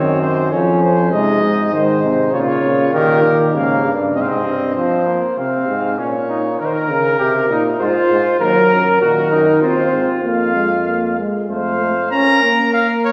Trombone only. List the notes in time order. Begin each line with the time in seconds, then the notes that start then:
Already playing: D#3
0.52 F3
1.12 G#3
1.73 D#3
2.03 C3
2.33 C#3
2.93 D#3
3.23 D#3
3.53 C#3
4.14 C3
8.40 F#3
9.01 D#3
9.61 C4
10.23 A#3
10.55 G#3
10.86 A#3
11.18 G#3
11.49 A3
11.80 A3
12.12 C#4
12.43 A#3